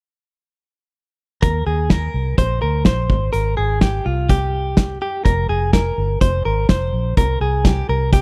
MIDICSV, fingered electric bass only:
0, 0, Header, 1, 2, 480
1, 0, Start_track
1, 0, Key_signature, -3, "major"
1, 0, Tempo, 478469
1, 1431, Time_signature, 4, 2, 24, 8
1, 8243, End_track
2, 0, Start_track
2, 0, Title_t, "Fingered electric bass"
2, 0, Program_c, 0, 33
2, 1432, Note_on_c, 0, 39, 79
2, 1635, Note_off_c, 0, 39, 0
2, 1670, Note_on_c, 0, 39, 75
2, 2077, Note_off_c, 0, 39, 0
2, 2148, Note_on_c, 0, 36, 76
2, 2353, Note_off_c, 0, 36, 0
2, 2387, Note_on_c, 0, 34, 66
2, 2592, Note_off_c, 0, 34, 0
2, 2632, Note_on_c, 0, 38, 75
2, 2835, Note_off_c, 0, 38, 0
2, 2869, Note_on_c, 0, 34, 72
2, 3073, Note_off_c, 0, 34, 0
2, 3106, Note_on_c, 0, 32, 78
2, 3312, Note_off_c, 0, 32, 0
2, 3350, Note_on_c, 0, 32, 82
2, 3554, Note_off_c, 0, 32, 0
2, 3595, Note_on_c, 0, 32, 83
2, 4001, Note_off_c, 0, 32, 0
2, 4070, Note_on_c, 0, 36, 78
2, 4990, Note_off_c, 0, 36, 0
2, 5273, Note_on_c, 0, 29, 91
2, 5476, Note_off_c, 0, 29, 0
2, 5514, Note_on_c, 0, 29, 77
2, 5920, Note_off_c, 0, 29, 0
2, 5997, Note_on_c, 0, 31, 76
2, 6198, Note_off_c, 0, 31, 0
2, 6230, Note_on_c, 0, 29, 81
2, 6434, Note_off_c, 0, 29, 0
2, 6478, Note_on_c, 0, 32, 74
2, 6679, Note_off_c, 0, 32, 0
2, 6715, Note_on_c, 0, 29, 77
2, 6917, Note_off_c, 0, 29, 0
2, 6947, Note_on_c, 0, 34, 77
2, 7153, Note_off_c, 0, 34, 0
2, 7196, Note_on_c, 0, 36, 89
2, 7398, Note_off_c, 0, 36, 0
2, 7429, Note_on_c, 0, 36, 77
2, 7838, Note_off_c, 0, 36, 0
2, 7915, Note_on_c, 0, 36, 77
2, 8243, Note_off_c, 0, 36, 0
2, 8243, End_track
0, 0, End_of_file